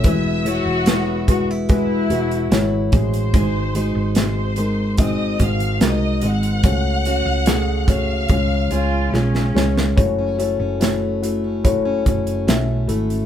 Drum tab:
HH |x-x-x-x-x-xxx-xx|x-x-x-x-x-xxx-xx|x-x-x-x-x-x-----|x-x-x-x-x-xxx-xx|
SD |----o-------o---|----o-------o---|----o-------oooo|----o-------o---|
BD |o-----o-o-----o-|o-------o-o-----|o-----o-o-------|o-------o-o-----|